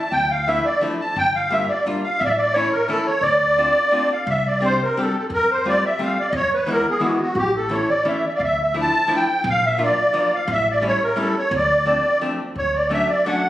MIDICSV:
0, 0, Header, 1, 4, 480
1, 0, Start_track
1, 0, Key_signature, -1, "minor"
1, 0, Tempo, 345423
1, 164, Time_signature, 3, 2, 24, 8
1, 18750, End_track
2, 0, Start_track
2, 0, Title_t, "Accordion"
2, 0, Program_c, 0, 21
2, 0, Note_on_c, 0, 81, 72
2, 165, Note_on_c, 0, 79, 107
2, 181, Note_off_c, 0, 81, 0
2, 422, Note_off_c, 0, 79, 0
2, 430, Note_on_c, 0, 77, 71
2, 660, Note_on_c, 0, 76, 100
2, 669, Note_off_c, 0, 77, 0
2, 904, Note_on_c, 0, 74, 79
2, 914, Note_off_c, 0, 76, 0
2, 1126, Note_off_c, 0, 74, 0
2, 1394, Note_on_c, 0, 81, 78
2, 1635, Note_off_c, 0, 81, 0
2, 1639, Note_on_c, 0, 79, 112
2, 1878, Note_on_c, 0, 77, 79
2, 1884, Note_off_c, 0, 79, 0
2, 2117, Note_off_c, 0, 77, 0
2, 2122, Note_on_c, 0, 76, 107
2, 2346, Note_on_c, 0, 74, 76
2, 2366, Note_off_c, 0, 76, 0
2, 2565, Note_off_c, 0, 74, 0
2, 2827, Note_on_c, 0, 77, 75
2, 3042, Note_on_c, 0, 76, 101
2, 3065, Note_off_c, 0, 77, 0
2, 3112, Note_off_c, 0, 76, 0
2, 3128, Note_on_c, 0, 74, 90
2, 3163, Note_on_c, 0, 76, 90
2, 3183, Note_off_c, 0, 74, 0
2, 3295, Note_off_c, 0, 76, 0
2, 3299, Note_on_c, 0, 74, 78
2, 3520, Note_on_c, 0, 73, 101
2, 3537, Note_off_c, 0, 74, 0
2, 3774, Note_off_c, 0, 73, 0
2, 3779, Note_on_c, 0, 70, 80
2, 4015, Note_off_c, 0, 70, 0
2, 4021, Note_on_c, 0, 69, 75
2, 4255, Note_on_c, 0, 73, 78
2, 4263, Note_off_c, 0, 69, 0
2, 4479, Note_on_c, 0, 74, 109
2, 4492, Note_off_c, 0, 73, 0
2, 5725, Note_on_c, 0, 77, 69
2, 5728, Note_off_c, 0, 74, 0
2, 5957, Note_off_c, 0, 77, 0
2, 5971, Note_on_c, 0, 76, 95
2, 6205, Note_on_c, 0, 74, 77
2, 6210, Note_off_c, 0, 76, 0
2, 6439, Note_off_c, 0, 74, 0
2, 6452, Note_on_c, 0, 72, 98
2, 6690, Note_off_c, 0, 72, 0
2, 6712, Note_on_c, 0, 70, 75
2, 6933, Note_off_c, 0, 70, 0
2, 6950, Note_on_c, 0, 69, 68
2, 7175, Note_off_c, 0, 69, 0
2, 7195, Note_on_c, 0, 69, 63
2, 7291, Note_off_c, 0, 69, 0
2, 7413, Note_on_c, 0, 70, 106
2, 7649, Note_off_c, 0, 70, 0
2, 7665, Note_on_c, 0, 72, 74
2, 7886, Note_off_c, 0, 72, 0
2, 7903, Note_on_c, 0, 74, 100
2, 8130, Note_off_c, 0, 74, 0
2, 8137, Note_on_c, 0, 76, 72
2, 8359, Note_off_c, 0, 76, 0
2, 8370, Note_on_c, 0, 77, 77
2, 8601, Note_off_c, 0, 77, 0
2, 8620, Note_on_c, 0, 74, 76
2, 8766, Note_on_c, 0, 75, 61
2, 8778, Note_off_c, 0, 74, 0
2, 8817, Note_off_c, 0, 75, 0
2, 8833, Note_on_c, 0, 73, 102
2, 9071, Note_off_c, 0, 73, 0
2, 9097, Note_on_c, 0, 71, 73
2, 9314, Note_off_c, 0, 71, 0
2, 9326, Note_on_c, 0, 70, 91
2, 9532, Note_off_c, 0, 70, 0
2, 9581, Note_on_c, 0, 68, 82
2, 9773, Note_on_c, 0, 66, 67
2, 9791, Note_off_c, 0, 68, 0
2, 10001, Note_off_c, 0, 66, 0
2, 10022, Note_on_c, 0, 66, 70
2, 10247, Note_on_c, 0, 67, 87
2, 10251, Note_off_c, 0, 66, 0
2, 10491, Note_off_c, 0, 67, 0
2, 10506, Note_on_c, 0, 69, 64
2, 10733, Note_on_c, 0, 73, 75
2, 10734, Note_off_c, 0, 69, 0
2, 10968, Note_on_c, 0, 74, 76
2, 10976, Note_off_c, 0, 73, 0
2, 11209, Note_off_c, 0, 74, 0
2, 11227, Note_on_c, 0, 76, 60
2, 11469, Note_off_c, 0, 76, 0
2, 11485, Note_on_c, 0, 74, 68
2, 11504, Note_off_c, 0, 74, 0
2, 11515, Note_on_c, 0, 76, 54
2, 11571, Note_off_c, 0, 76, 0
2, 11602, Note_on_c, 0, 74, 58
2, 11641, Note_on_c, 0, 77, 53
2, 11694, Note_off_c, 0, 77, 0
2, 11697, Note_off_c, 0, 74, 0
2, 11728, Note_on_c, 0, 76, 82
2, 11963, Note_off_c, 0, 76, 0
2, 11991, Note_on_c, 0, 76, 67
2, 12186, Note_off_c, 0, 76, 0
2, 12243, Note_on_c, 0, 81, 92
2, 12701, Note_off_c, 0, 81, 0
2, 12724, Note_on_c, 0, 79, 76
2, 13181, Note_off_c, 0, 79, 0
2, 13197, Note_on_c, 0, 77, 104
2, 13417, Note_off_c, 0, 77, 0
2, 13425, Note_on_c, 0, 76, 78
2, 13643, Note_off_c, 0, 76, 0
2, 13670, Note_on_c, 0, 74, 84
2, 14377, Note_on_c, 0, 77, 72
2, 14384, Note_off_c, 0, 74, 0
2, 14595, Note_off_c, 0, 77, 0
2, 14622, Note_on_c, 0, 76, 100
2, 14844, Note_off_c, 0, 76, 0
2, 14881, Note_on_c, 0, 74, 77
2, 15066, Note_off_c, 0, 74, 0
2, 15114, Note_on_c, 0, 73, 106
2, 15330, Note_off_c, 0, 73, 0
2, 15338, Note_on_c, 0, 70, 78
2, 15532, Note_off_c, 0, 70, 0
2, 15579, Note_on_c, 0, 69, 72
2, 15778, Note_off_c, 0, 69, 0
2, 15820, Note_on_c, 0, 73, 75
2, 16032, Note_off_c, 0, 73, 0
2, 16063, Note_on_c, 0, 74, 92
2, 16943, Note_off_c, 0, 74, 0
2, 17479, Note_on_c, 0, 73, 80
2, 17715, Note_on_c, 0, 74, 61
2, 17717, Note_off_c, 0, 73, 0
2, 17946, Note_off_c, 0, 74, 0
2, 17973, Note_on_c, 0, 76, 87
2, 18196, Note_on_c, 0, 74, 65
2, 18201, Note_off_c, 0, 76, 0
2, 18425, Note_off_c, 0, 74, 0
2, 18435, Note_on_c, 0, 78, 68
2, 18750, Note_off_c, 0, 78, 0
2, 18750, End_track
3, 0, Start_track
3, 0, Title_t, "Hollow-body jazz guitar"
3, 0, Program_c, 1, 26
3, 661, Note_on_c, 1, 53, 52
3, 668, Note_on_c, 1, 57, 50
3, 672, Note_on_c, 1, 62, 36
3, 678, Note_on_c, 1, 64, 61
3, 907, Note_off_c, 1, 53, 0
3, 910, Note_off_c, 1, 62, 0
3, 911, Note_off_c, 1, 57, 0
3, 915, Note_off_c, 1, 64, 0
3, 1129, Note_on_c, 1, 53, 65
3, 1140, Note_on_c, 1, 57, 55
3, 1148, Note_on_c, 1, 62, 55
3, 1157, Note_on_c, 1, 64, 52
3, 1382, Note_off_c, 1, 53, 0
3, 1388, Note_off_c, 1, 57, 0
3, 1393, Note_off_c, 1, 62, 0
3, 1393, Note_off_c, 1, 64, 0
3, 2090, Note_on_c, 1, 55, 58
3, 2100, Note_on_c, 1, 58, 50
3, 2108, Note_on_c, 1, 62, 51
3, 2120, Note_on_c, 1, 65, 57
3, 2343, Note_off_c, 1, 55, 0
3, 2348, Note_off_c, 1, 58, 0
3, 2353, Note_off_c, 1, 62, 0
3, 2356, Note_off_c, 1, 65, 0
3, 2583, Note_on_c, 1, 55, 52
3, 2594, Note_on_c, 1, 58, 41
3, 2595, Note_on_c, 1, 62, 66
3, 2604, Note_on_c, 1, 65, 64
3, 2826, Note_off_c, 1, 55, 0
3, 2828, Note_off_c, 1, 58, 0
3, 2832, Note_off_c, 1, 62, 0
3, 2833, Note_off_c, 1, 65, 0
3, 3547, Note_on_c, 1, 52, 51
3, 3552, Note_on_c, 1, 57, 51
3, 3554, Note_on_c, 1, 61, 53
3, 3561, Note_on_c, 1, 64, 64
3, 3781, Note_off_c, 1, 57, 0
3, 3783, Note_off_c, 1, 52, 0
3, 3783, Note_off_c, 1, 64, 0
3, 3784, Note_off_c, 1, 61, 0
3, 4007, Note_on_c, 1, 52, 59
3, 4016, Note_on_c, 1, 57, 48
3, 4017, Note_on_c, 1, 61, 53
3, 4026, Note_on_c, 1, 64, 75
3, 4250, Note_off_c, 1, 52, 0
3, 4250, Note_off_c, 1, 57, 0
3, 4254, Note_off_c, 1, 61, 0
3, 4258, Note_off_c, 1, 64, 0
3, 4971, Note_on_c, 1, 57, 49
3, 4976, Note_on_c, 1, 62, 44
3, 4978, Note_on_c, 1, 60, 48
3, 4985, Note_on_c, 1, 65, 59
3, 5211, Note_off_c, 1, 62, 0
3, 5214, Note_off_c, 1, 57, 0
3, 5215, Note_off_c, 1, 65, 0
3, 5216, Note_off_c, 1, 60, 0
3, 5444, Note_on_c, 1, 60, 63
3, 5447, Note_on_c, 1, 57, 65
3, 5458, Note_on_c, 1, 62, 60
3, 5463, Note_on_c, 1, 65, 58
3, 5693, Note_off_c, 1, 60, 0
3, 5696, Note_off_c, 1, 57, 0
3, 5698, Note_off_c, 1, 62, 0
3, 5698, Note_off_c, 1, 65, 0
3, 6399, Note_on_c, 1, 55, 63
3, 6415, Note_on_c, 1, 60, 54
3, 6421, Note_on_c, 1, 62, 51
3, 6426, Note_on_c, 1, 67, 56
3, 6656, Note_off_c, 1, 55, 0
3, 6665, Note_off_c, 1, 60, 0
3, 6668, Note_off_c, 1, 67, 0
3, 6669, Note_off_c, 1, 62, 0
3, 6910, Note_on_c, 1, 55, 63
3, 6912, Note_on_c, 1, 62, 52
3, 6913, Note_on_c, 1, 60, 48
3, 6928, Note_on_c, 1, 67, 67
3, 7151, Note_off_c, 1, 60, 0
3, 7153, Note_off_c, 1, 55, 0
3, 7154, Note_off_c, 1, 62, 0
3, 7161, Note_off_c, 1, 67, 0
3, 7856, Note_on_c, 1, 55, 62
3, 7858, Note_on_c, 1, 57, 44
3, 7866, Note_on_c, 1, 60, 51
3, 7874, Note_on_c, 1, 65, 58
3, 8101, Note_off_c, 1, 55, 0
3, 8103, Note_off_c, 1, 60, 0
3, 8104, Note_off_c, 1, 57, 0
3, 8105, Note_off_c, 1, 65, 0
3, 8321, Note_on_c, 1, 55, 59
3, 8329, Note_on_c, 1, 57, 55
3, 8331, Note_on_c, 1, 60, 58
3, 8344, Note_on_c, 1, 65, 53
3, 8571, Note_off_c, 1, 57, 0
3, 8572, Note_off_c, 1, 55, 0
3, 8576, Note_off_c, 1, 60, 0
3, 8578, Note_off_c, 1, 65, 0
3, 9260, Note_on_c, 1, 52, 62
3, 9273, Note_on_c, 1, 56, 51
3, 9276, Note_on_c, 1, 59, 46
3, 9287, Note_on_c, 1, 64, 70
3, 9516, Note_off_c, 1, 52, 0
3, 9518, Note_off_c, 1, 56, 0
3, 9522, Note_off_c, 1, 59, 0
3, 9528, Note_off_c, 1, 64, 0
3, 9726, Note_on_c, 1, 52, 64
3, 9736, Note_on_c, 1, 56, 47
3, 9740, Note_on_c, 1, 64, 68
3, 9744, Note_on_c, 1, 59, 52
3, 9987, Note_off_c, 1, 52, 0
3, 9987, Note_off_c, 1, 56, 0
3, 9987, Note_off_c, 1, 59, 0
3, 9990, Note_off_c, 1, 64, 0
3, 10690, Note_on_c, 1, 52, 63
3, 10698, Note_on_c, 1, 61, 42
3, 10701, Note_on_c, 1, 57, 46
3, 10711, Note_on_c, 1, 64, 58
3, 10949, Note_off_c, 1, 52, 0
3, 10949, Note_off_c, 1, 61, 0
3, 10953, Note_off_c, 1, 57, 0
3, 10958, Note_off_c, 1, 64, 0
3, 11183, Note_on_c, 1, 52, 56
3, 11185, Note_on_c, 1, 57, 51
3, 11190, Note_on_c, 1, 61, 57
3, 11193, Note_on_c, 1, 64, 62
3, 11438, Note_off_c, 1, 57, 0
3, 11441, Note_off_c, 1, 52, 0
3, 11443, Note_off_c, 1, 64, 0
3, 11444, Note_off_c, 1, 61, 0
3, 12149, Note_on_c, 1, 53, 55
3, 12151, Note_on_c, 1, 57, 45
3, 12159, Note_on_c, 1, 62, 48
3, 12167, Note_on_c, 1, 64, 51
3, 12406, Note_off_c, 1, 53, 0
3, 12410, Note_off_c, 1, 57, 0
3, 12410, Note_off_c, 1, 62, 0
3, 12411, Note_off_c, 1, 64, 0
3, 12611, Note_on_c, 1, 53, 63
3, 12620, Note_on_c, 1, 57, 46
3, 12631, Note_on_c, 1, 62, 57
3, 12634, Note_on_c, 1, 64, 58
3, 12876, Note_off_c, 1, 53, 0
3, 12877, Note_off_c, 1, 57, 0
3, 12884, Note_off_c, 1, 64, 0
3, 12886, Note_off_c, 1, 62, 0
3, 13591, Note_on_c, 1, 53, 51
3, 13597, Note_on_c, 1, 58, 44
3, 13602, Note_on_c, 1, 65, 69
3, 13604, Note_on_c, 1, 62, 51
3, 13848, Note_off_c, 1, 58, 0
3, 13849, Note_off_c, 1, 53, 0
3, 13849, Note_off_c, 1, 62, 0
3, 13852, Note_off_c, 1, 65, 0
3, 14085, Note_on_c, 1, 53, 74
3, 14093, Note_on_c, 1, 58, 43
3, 14101, Note_on_c, 1, 62, 52
3, 14104, Note_on_c, 1, 65, 57
3, 14332, Note_off_c, 1, 53, 0
3, 14333, Note_off_c, 1, 58, 0
3, 14339, Note_off_c, 1, 65, 0
3, 14340, Note_off_c, 1, 62, 0
3, 15026, Note_on_c, 1, 55, 50
3, 15034, Note_on_c, 1, 57, 46
3, 15042, Note_on_c, 1, 61, 56
3, 15045, Note_on_c, 1, 64, 49
3, 15279, Note_off_c, 1, 55, 0
3, 15284, Note_off_c, 1, 57, 0
3, 15286, Note_off_c, 1, 64, 0
3, 15288, Note_off_c, 1, 61, 0
3, 15504, Note_on_c, 1, 55, 64
3, 15519, Note_on_c, 1, 57, 56
3, 15519, Note_on_c, 1, 61, 65
3, 15524, Note_on_c, 1, 64, 69
3, 15757, Note_off_c, 1, 55, 0
3, 15760, Note_off_c, 1, 57, 0
3, 15762, Note_off_c, 1, 64, 0
3, 15763, Note_off_c, 1, 61, 0
3, 16475, Note_on_c, 1, 53, 59
3, 16485, Note_on_c, 1, 57, 44
3, 16486, Note_on_c, 1, 62, 54
3, 16495, Note_on_c, 1, 60, 48
3, 16726, Note_off_c, 1, 53, 0
3, 16727, Note_off_c, 1, 57, 0
3, 16728, Note_off_c, 1, 60, 0
3, 16730, Note_off_c, 1, 62, 0
3, 16971, Note_on_c, 1, 53, 70
3, 16976, Note_on_c, 1, 57, 58
3, 16982, Note_on_c, 1, 60, 58
3, 16994, Note_on_c, 1, 62, 70
3, 17219, Note_off_c, 1, 57, 0
3, 17220, Note_off_c, 1, 53, 0
3, 17225, Note_off_c, 1, 60, 0
3, 17227, Note_off_c, 1, 62, 0
3, 17926, Note_on_c, 1, 54, 50
3, 17936, Note_on_c, 1, 57, 48
3, 17943, Note_on_c, 1, 61, 47
3, 17944, Note_on_c, 1, 62, 67
3, 18173, Note_off_c, 1, 54, 0
3, 18174, Note_off_c, 1, 57, 0
3, 18175, Note_off_c, 1, 61, 0
3, 18180, Note_off_c, 1, 62, 0
3, 18427, Note_on_c, 1, 54, 64
3, 18430, Note_on_c, 1, 57, 58
3, 18441, Note_on_c, 1, 62, 71
3, 18450, Note_on_c, 1, 61, 58
3, 18659, Note_off_c, 1, 54, 0
3, 18663, Note_off_c, 1, 57, 0
3, 18664, Note_off_c, 1, 61, 0
3, 18664, Note_off_c, 1, 62, 0
3, 18750, End_track
4, 0, Start_track
4, 0, Title_t, "Upright bass"
4, 0, Program_c, 2, 32
4, 166, Note_on_c, 2, 38, 74
4, 800, Note_off_c, 2, 38, 0
4, 1617, Note_on_c, 2, 31, 74
4, 2243, Note_off_c, 2, 31, 0
4, 3069, Note_on_c, 2, 33, 74
4, 3681, Note_off_c, 2, 33, 0
4, 4463, Note_on_c, 2, 38, 65
4, 5095, Note_off_c, 2, 38, 0
4, 5930, Note_on_c, 2, 36, 87
4, 6562, Note_off_c, 2, 36, 0
4, 7362, Note_on_c, 2, 41, 78
4, 7988, Note_off_c, 2, 41, 0
4, 8791, Note_on_c, 2, 40, 90
4, 9413, Note_off_c, 2, 40, 0
4, 10214, Note_on_c, 2, 33, 78
4, 10847, Note_off_c, 2, 33, 0
4, 11667, Note_on_c, 2, 38, 69
4, 12301, Note_off_c, 2, 38, 0
4, 13119, Note_on_c, 2, 34, 91
4, 13747, Note_off_c, 2, 34, 0
4, 14557, Note_on_c, 2, 33, 93
4, 15181, Note_off_c, 2, 33, 0
4, 15997, Note_on_c, 2, 38, 84
4, 16626, Note_off_c, 2, 38, 0
4, 17446, Note_on_c, 2, 38, 67
4, 18068, Note_off_c, 2, 38, 0
4, 18750, End_track
0, 0, End_of_file